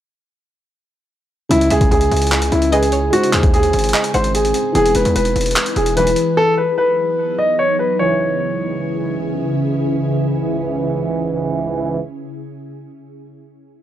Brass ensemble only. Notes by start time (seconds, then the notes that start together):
2.72 C#2 G#2 E3
5.97 B1 G#2 E3
7.99 C#2 G#2 E3